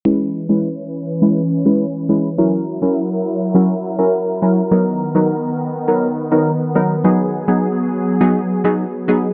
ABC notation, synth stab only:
X:1
M:4/4
L:1/16
Q:1/4=103
K:C#dor
V:1 name="Synth stab"
[G,CEB]3 [G,CEB] z4 [G,CEB] z2 [G,CEB] z2 [G,CEB] z | [F,CEA]3 [F,CEA] z4 [F,CEA] z2 [F,CEA] z2 [F,CEA] z | [F,B,DA]3 [F,B,DA] z4 [F,B,DA] z2 [F,B,DA] z2 [F,B,DA] z | [F,B,DG]3 [F,B,DG] z4 [F,B,DG] z2 [F,B,DG] z2 [F,B,DG] z |]